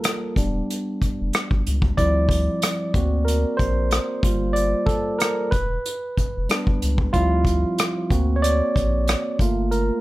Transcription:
Already playing: G3 A#3 F4 A4 A#4
0.04 cross-stick, closed hi-hat
0.36 E1 G3 B3 D4, kick, closed hi-hat
0.70 closed hi-hat
1.02 F1, kick, closed hi-hat
1.21 F1
1.33 cross-stick, closed hi-hat
1.51 G1, kick
1.67 C#2, closed hi-hat
1.82 kick
1.97 D2 F3 G3 C4 E4 D5, kick, closed hi-hat
2.29 kick, closed hi-hat
2.62 cross-stick, closed hi-hat
2.94 D2 A#3 C4 F#4, kick, closed hi-hat
3.25 A#4, closed hi-hat
3.57 A#1 C5, kick, closed hi-hat
3.91 cross-stick, closed hi-hat
4.23 G1 G3 A#3 F4, kick, closed hi-hat
4.53 D5, closed hi-hat
4.86 A4, kick, closed hi-hat
5.19 A#4, cross-stick, closed hi-hat
5.51 E1 B4, kick, closed hi-hat
5.86 closed hi-hat
6.18 F1, kick, closed hi-hat
6.37 F1
6.49 G3 B3 D4, cross-stick, closed hi-hat
6.67 G1, kick
6.82 C#2, closed hi-hat
6.98 kick
7.13 D2 F3 G3 C4 E4 F4, kick, closed hi-hat
7.45 kick, closed hi-hat
7.78 cross-stick, closed hi-hat
8.10 D2 A#3 C4 F#4, kick, closed hi-hat
8.36 C#5
8.42 D5, closed hi-hat
8.76 A#1, kick, closed hi-hat
9.07 cross-stick, closed hi-hat
9.39 G1 A3 A#3 F4, kick, closed hi-hat
9.71 A#4, closed hi-hat

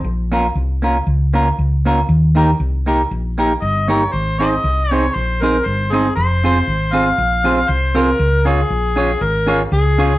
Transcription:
0.04 A#1
0.32 A#3 C#4 F4 A#4
0.55 C2
0.82 A#3 C#4 F4 A#4
1.07 C#2
1.33 A#3 C#4 F4 A#4
1.58 C#2
1.85 A#3 C#4 F4 A#4
2.08 D#2
2.35 A#3 D#4 G4 A#4
2.60 C2
2.86 A#3 D#4 G4 A#4
3.11 A#1
3.38 A#3 D#4 G4 A#4
3.62 G1 D#5
3.88 A#3 D#4 G4 A#4 C#5
4.12 G#1 C5
4.39 C4 D#4 G#4 C5 D#5
4.64 C2
4.91 C4 D#4 G#4 C5 C#5
5.15 A#1 C5
5.42 C4 D#4 G#4 A#4 C5
5.65 G1 C5
5.92 C4 D#4 G#4 C5
6.16 F1 C5
6.44 C4 F4 G#4 C5
6.67 G#1
6.93 C4 F4 G#4 C5 F5
7.18 A#1
7.44 C4 F4 G#4 C5
7.69 C2 C5
7.94 C4 F4 G#4 A#4 C5
8.19 C#2
8.45 C#4 F4 G#4 C#5
8.70 A#1
8.96 C#4 F4 G#4 C#5
9.21 G#1 A#4
9.47 C#4 F4 G#4 C#5
9.72 C#2 G#4
9.98 C#4 F4 G#4 C#5

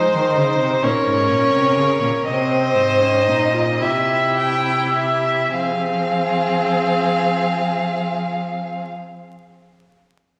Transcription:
Already playing: D#4 C5
0.14 D#3
0.37 C#3
0.59 C3
0.83 A#2 C#4 A#4 C#5
1.06 G#2
1.29 A#2
1.53 C3
1.76 C#3
2.01 A#2
2.25 C3 C4 C5 D#5
2.75 G#2
3.01 C#4
3.27 A#2 D#4
3.53 F4
3.80 C3 E4 G4 E5
4.37 G5
4.95 E5
5.53 F3 C4 G#4 F5

